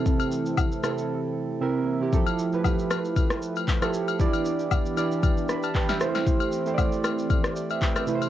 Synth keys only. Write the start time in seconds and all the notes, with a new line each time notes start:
Already playing: C3 C4 E4 A4
0.83 C3 C4 E4 A4
1.61 C3 C4 E4 A#4 E5
2.00 C3 C4 E4 G4
2.12 F3 E4 G4 A4
2.52 F3 E4 G4 B4
3.82 F3 E4 G4 A4
4.19 E3 E4 G4 D5
4.97 E3 E4 G4 D5
5.49 D5 B5
5.63 A5
5.75 B4 G5
5.89 G4 E5
6.00 A3 E4 G4 C5
6.66 A3 E4 G4 C5
6.74 D5
7.56 D5
7.70 G4 E5
7.82 B4 G5
7.96 G4 E5
8.07 C3 A3 E4 B4
8.15 C5